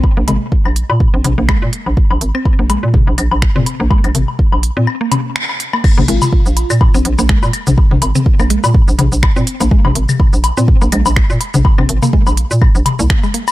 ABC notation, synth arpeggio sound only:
X:1
M:4/4
L:1/16
Q:"Swing 16ths" 1/4=124
K:Abmix
V:1 name="Synth arpeggio sound"
z B, A, z6 C z B, A, z3 | z3 C z B, A, z6 C z B, | A, z6 C z B, D z4 B, | z B, A, z6 C z B, A, z3 |
z3 C z B, A, z6 C z B, | A, z6 C z B, A, z4 z | z C z B, A, z6 B, z A, B, z |]